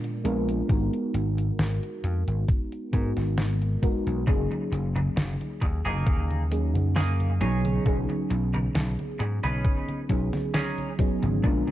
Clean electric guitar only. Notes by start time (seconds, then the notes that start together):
4.27 muted clean electric guitar stroke
4.51 muted clean electric guitar stroke
4.72 muted clean electric guitar stroke
4.96 muted clean electric guitar stroke
5.16 muted clean electric guitar stroke
5.62 muted clean electric guitar stroke
5.85 A#3 D#4 G#4
6.96 A#3 D#4 G#4
7.41 C#4 D#4 G#4
8.09 muted clean electric guitar stroke
8.30 muted clean electric guitar stroke
8.54 muted clean electric guitar stroke
8.75 muted clean electric guitar stroke
9.19 muted clean electric guitar stroke
9.44 C#4 D#4 B4
10.54 C#4 D#4 G#4
11.23 muted clean electric guitar stroke
11.44 muted clean electric guitar stroke
11.68 muted clean electric guitar stroke